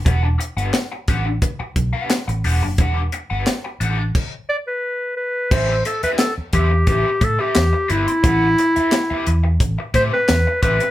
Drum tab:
CC |----------------|--------x-------|x---------------|----------------|
HH |x-xxx-x-x-x-xxo-|x-x-x-x---------|--xxx-x-x-x-x-xx|x-xxx-x-x-x-x-xx|
CP |----x-------x---|----x-----------|----x-------x---|----x-------x---|
SD |----o-------o---|----o-----------|----o-------o---|----o-------o---|
BD |o-----o-o-o-----|o-------o-------|o-----o-o-o-----|o-------o-o---o-|